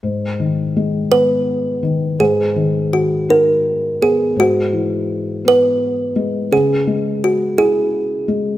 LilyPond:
<<
  \new Staff \with { instrumentName = "Kalimba" } { \time 6/8 \key gis \minor \tempo 4. = 56 r4. b'4. | gis'4 fis'8 ais'4 gis'8 | fis'4. b'4. | gis'4 fis'8 gis'4. | }
  \new Staff \with { instrumentName = "Felt piano" } { \clef bass \time 6/8 \key gis \minor gis,8 dis8 gis8 b4 dis8 | gis,8 dis4 dis'4 b8 | gis,8 e4 b4 gis8 | cis8 gis4 e'4 gis8 | }
>>